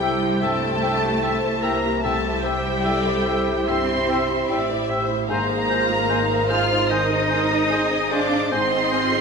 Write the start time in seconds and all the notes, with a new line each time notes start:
Already playing: C2 G3 E4 G4 C5 G5
0.00 G4 A4 E5 G5
0.23 E4
0.40 G2 A3 C4 E4 G4 A4 E5 G5 A5
0.62 G4
0.80 D4 C5 E5 G5
1.03 G4
1.21 E4 A4 C5 E5 G5
1.44 C5
1.62 A#3 G4 A#4 E5 G5 A#5
1.85 E4
2.03 C2 A3 E4 G4 A4 C5 E5 G5 A5
2.25 G4
2.43 G3 G4 C5 E5 G5
2.65 G4
2.83 E4 A4 D5 E5 G5
3.06 C5
3.25 G4 C5 E5 G5
3.48 E4
3.66 G2 C4 G4 C5 E5 G5 C6
3.89 G4
4.08 C5 E5 G5
4.30 G4
4.48 A1 E4 G4 D5 E5 G5
4.70 C5
4.89 G4 C5 E5 G5
5.09 E4
5.29 G#1 G#2 D#3 A#3 D#4 G#4 A#4 C5 F5 G#5 A#5
5.49 G#4
5.69 F4 C5 G#5
5.90 G#4
6.09 D#4 A#4 C5 G#5
6.30 C5
6.50 D#4 F4 G#4 C5 F5 G#5 F6
6.70 D#4
6.90 D#3 D#4 A#4 C5 D#5 G#5 D#6
7.10 G#4
7.29 A#4 C5 G#5
7.51 G#4
7.70 C4 D#4 G#4 C5 D#5 G#5
7.91 C5
8.11 D4 G#4 C5 D5 F5 G#5 D6
8.31 D#4
8.50 G#1 G#2 C4 D#4 G#4 C5 D#5 G#5 C6
8.72 G#4
8.91 F4 C5 G#5
9.12 G#4